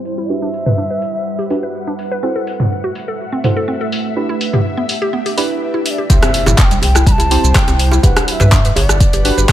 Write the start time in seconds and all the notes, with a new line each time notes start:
Already playing: G3 C4 E4 G4 C5
0.05 open hi-hat
0.18 E4
0.29 D4 F#4 G4 B4 E5 F#5
0.42 D4
0.54 open hi-hat
0.66 B4, mid tom
0.78 D4
0.90 B4
1.02 open hi-hat
1.39 G4, open hi-hat
1.50 D4 F#4 G4 B4, open hi-hat
1.63 B4
1.87 D4
1.99 open hi-hat
2.11 B4
2.23 A3 C4 E4 F#4 A4 C5 E5
2.36 A4
2.47 open hi-hat
2.60 mid tom
2.84 F#4
2.95 open hi-hat
3.08 A4
3.32 C4
3.44 E4 F#4 A4 C5, mid tom, open hi-hat
3.57 A4
3.68 C4
3.81 A4
3.92 open hi-hat
4.16 D4 E4 G4 B4
4.29 E4
4.41 open hi-hat
4.53 G4, mid tom
4.77 B3
4.89 open hi-hat
5.02 G4
5.13 B3
5.26 G4, open hi-hat
5.37 D4 E4 G4 B4, open hi-hat
5.74 E4
5.86 E5, open hi-hat
5.90 D5
5.98 G4
6.09 C2 G3 C4 E4 G4 C5 F#5, kick, closed hi-hat, impact, djembe tone, shaker
6.15 E5
6.22 C4, cross-stick, closed hi-hat, shaker
6.34 open hi-hat
6.46 G1 E4, closed hi-hat, mid tom, djembe slap, djembe tone, shaker
6.58 A5, kick, clap, closed hi-hat, shaker
6.64 G5
6.71 G3, closed hi-hat, shaker
6.82 C2 G5, open hi-hat, djembe tone
6.95 E4, cross-stick, closed hi-hat, shaker
7.07 G3 B5, kick, closed hi-hat, shaker
7.12 A5
7.18 C2 E4, closed hi-hat, djembe tone, shaker
7.31 C4 E4 G4 C5, open hi-hat
7.43 C2, shaker
7.55 G5, kick, cross-stick, clap, closed hi-hat, shaker
7.68 C2 C4, closed hi-hat, djembe slap, shaker
7.79 open hi-hat
7.91 E4, djembe slap, shaker
8.03 G1 G3 D4 F#4 G4 B4 F#5, kick, closed hi-hat, djembe tone, shaker
8.17 D4, cross-stick, closed hi-hat, shaker
8.28 F#5, open hi-hat
8.32 E5
8.40 G2 B4, closed hi-hat, mid tom, djembe slap, djembe tone, shaker
8.52 D4, kick, clap, closed hi-hat, shaker
8.65 B4, closed hi-hat, shaker
8.76 G1 C#5, open hi-hat, djembe tone
8.88 D5, cross-stick, closed hi-hat, shaker
9.00 kick, closed hi-hat, shaker
9.13 G1 G4, closed hi-hat, shaker
9.25 D4 F#4 G4 B4, open hi-hat
9.37 G1 B4, shaker
9.49 kick